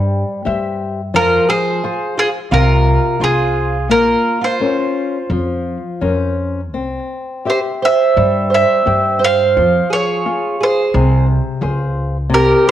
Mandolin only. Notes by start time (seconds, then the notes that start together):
Already playing: C5
1.16 A#4
1.50 C5
2.19 G#4
2.54 A#4
3.24 G#4
3.91 A#4
4.44 C5
7.50 C5
7.85 E5
8.54 E5
9.24 F5
9.93 C#5
10.63 C5
12.34 A#4